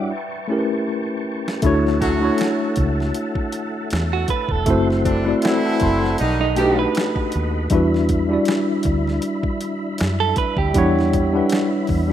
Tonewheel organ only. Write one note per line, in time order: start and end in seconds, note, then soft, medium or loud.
0.10 1.61 B4 medium
0.10 1.61 G5 medium
0.10 1.61 A5 medium
0.10 1.61 C#6 medium
1.63 4.64 A4 medium
1.63 6.15 E5 medium
1.63 4.64 F#5 medium
1.63 4.64 A5 medium
4.67 6.17 A4 medium
4.67 6.17 F#5 medium
4.67 6.17 C6 medium
6.19 7.69 A4 medium
6.19 7.69 D#5 medium
6.19 7.69 F#5 medium
6.19 12.13 B5 medium
7.71 12.13 D4 medium
7.71 12.13 E4 medium
7.71 12.13 E5 medium